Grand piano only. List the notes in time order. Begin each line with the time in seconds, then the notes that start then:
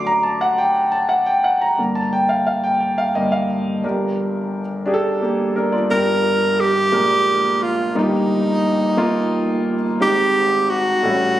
Already playing: D3 F#3 A3 C6 D6
0.07 A#5
0.23 A5
0.41 F#5
0.58 G5
0.92 A5
1.09 F#5
1.26 G5
1.44 F#5
1.61 A#5
1.77 G2 D3 A#3
1.95 A5
2.13 G5
2.29 F5
2.47 F5
2.64 G5
2.80 G5
2.98 F5
3.15 G2 D3 A#3 D#5
3.32 F5
3.83 G1 G2 D4 G4 A#4
4.86 D4 G4 G#4
4.94 A4
5.21 A#3 G4
5.56 D4 A#4
5.72 F4 D5
5.89 G1 G2 D4 G4 A#4
6.92 A#1 A#2 G#3 A#3 D4 F4 A#4
7.95 G1 G2 A#3 D#4 F4
8.03 G4
8.97 A#3 D#4 F4
10.00 G#1 G#2 G#3 C4 D#4
11.02 A1 A2 G3 A3 C#4 E4 A4